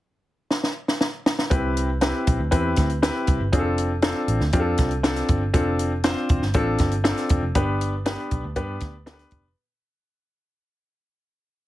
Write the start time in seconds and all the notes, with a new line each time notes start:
0.51 snare
0.63 snare
0.88 snare
1.01 snare
1.26 snare
1.39 snare
1.50 C2 C4 E4 G4 B4, kick, closed hi-hat
1.77 closed hi-hat
2.01 C4 E4 G4 B4, snare, closed hi-hat
2.27 B1, kick, closed hi-hat
2.39 D2
2.51 E2 C4 E4 G4 B4, kick, closed hi-hat
2.76 D2, kick, snare, closed hi-hat
2.90 closed hi-hat
3.02 C4 E4 G4 B4, snare, closed hi-hat
3.27 C2, kick, closed hi-hat
3.40 G1
3.52 F1 C4 D4 F4 G#4, kick, closed hi-hat
3.59 A4
3.78 closed hi-hat
4.02 C4 D4 F4 A4, snare, closed hi-hat
4.28 A1, closed hi-hat
4.41 D2, snare
4.53 F2 C4 D4 F4 G4, kick, closed hi-hat
4.60 A4
4.78 C2, kick, snare, closed hi-hat
4.91 closed hi-hat
5.03 C4 D4 F4 A4, snare, closed hi-hat
5.16 snare, closed hi-hat
5.28 G1, kick, closed hi-hat
5.54 F1 C4 D4 F4 A4, kick, closed hi-hat
5.79 closed hi-hat
6.04 C4 D4 F4 C5, snare, closed hi-hat
6.29 E1, kick, closed hi-hat
6.42 G1, snare
6.54 A1 C4 D4 F4 A4, kick, closed hi-hat
6.78 G1, kick, snare, closed hi-hat
6.92 closed hi-hat
7.04 C4 D4 F4 A4, snare, closed hi-hat
7.17 snare, closed hi-hat
7.29 F1, kick, closed hi-hat
7.42 F1
7.55 G1 B3 D4 G4 B4, kick, closed hi-hat
7.81 closed hi-hat
8.06 B3 D4 G4 B4, snare, closed hi-hat
8.31 B1, kick, closed hi-hat
8.44 D2
8.56 G2 B3 D4 G4 B4, kick, closed hi-hat
8.80 D2, kick, snare, closed hi-hat
9.06 B3 D4 G4 A4, snare, closed hi-hat
9.13 B4
9.19 snare, closed hi-hat
9.31 F1, kick, closed hi-hat